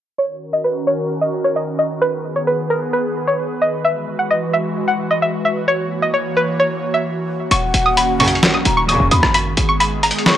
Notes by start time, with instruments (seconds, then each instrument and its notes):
0.18 analog synth pad D#3 C#4 F#4 A#4, synth pluck C#5
0.53 synth pluck D#5
0.64 synth pluck B4
0.87 synth pluck C#5
1.21 synth pluck D#5
1.44 synth pluck C#5
1.56 synth pluck D#5
1.79 synth pluck D#5
2.02 analog synth pad B3 G#4 B4, synth pluck B4
2.36 synth pluck C#5
2.47 synth pluck B4
2.70 synth pluck A#4
2.93 synth pluck B4
3.27 synth pluck C#5
3.62 synth pluck D#5
3.85 analog synth pad E3 G#3 F#4, synth pluck E5
4.19 synth pluck F#5
4.31 synth pluck D#5
4.53 synth pluck E5
4.88 synth pluck F#5
5.11 synth pluck D#5
5.22 synth pluck E5
5.45 synth pluck E5
5.68 analog synth pad E3 A#3 C#5, synth pluck C#5
6.02 synth pluck D#5
6.14 synth pluck C#5
6.37 synth pluck B4
6.60 synth pluck C#5
6.94 synth pluck E5
7.51 808-style bass D#1, analog synth pad D#3 A#3 C#4 F#4, flute F#5, synth pluck C#6, closed hi-hat
7.74 808-style bass D#1, closed hi-hat
7.86 synth pluck D#6
7.97 synth pluck B5, closed hi-hat
8.20 808-style bass A#1, string section F#2 A#2 C#3, synth pluck C#6, closed hi-hat, open hi-hat
8.28 closed hi-hat
8.35 closed hi-hat
8.43 snare, closed hi-hat
8.54 synth pluck D#6
8.65 808-style bass D#1, flute A#5, closed hi-hat
8.77 synth pluck C#6
8.89 string section F#2 A#2 C#3, flute C#6, synth pluck D#6, closed hi-hat
9.00 808-style bass D#1
9.11 808-style bass D#2, flute B5, synth pluck D#6, closed hi-hat
9.23 808-style bass G#1, cross-stick
9.34 analog synth pad G#3 B3 G#4, synth pluck B5, closed hi-hat
9.57 808-style bass G#1, closed hi-hat
9.69 synth pluck C#6
9.80 synth pluck B5, closed hi-hat
10.03 synth pluck A#5, closed hi-hat
10.11 closed hi-hat
10.18 closed hi-hat
10.26 synth pluck B5, flute C#6, snare, closed hi-hat